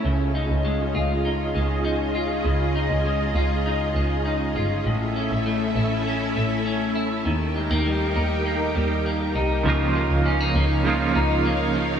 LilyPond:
<<
  \new Staff \with { instrumentName = "String machine" } { \time 4/4 \key des \lydian \tempo 4 = 100 <des' f' aes' ees''>1~ | <des' f' aes' ees''>1 | <cis' e' a' e''>1 | <ees' g' bes' g''>1 |
<ees' bes' des'' f''>1 | }
  \new Staff \with { instrumentName = "Clean electric guitar" } { \time 4/4 \key des \lydian des8 ees'8 aes8 f'8 ees'8 aes8 ees'8 f'8 | des8 ees'8 aes8 f'8 ees'8 aes8 ees'8 f'8 | a,8 cis'8 a8 e'8 cis'8 a8 cis'8 e'8 | ees8 aes16 bes16 g8 ees'8 bes8 g8 bes8 ees'8 |
des8 f8 des'16 ees'16 bes8 f8 ees'8 bes8 f8 | }
  \new Staff \with { instrumentName = "Clean electric guitar" } { \time 4/4 \key des \lydian r1 | r1 | r1 | r1 |
<des f bes ees' f'>2 <des f bes ees' f'>2 | }
  \new Staff \with { instrumentName = "Double bass" } { \clef bass \time 4/4 \key des \lydian des,8. des,8. des,4 des,4. | des,8. des,8. des,4 des,4 g,,8 | a,,8. a,,8. a,,4 a,,4. | ees,8. ees,8. ees,4 ees,4 c,8 |
des,8. des,8. des,4 des,4. | }
>>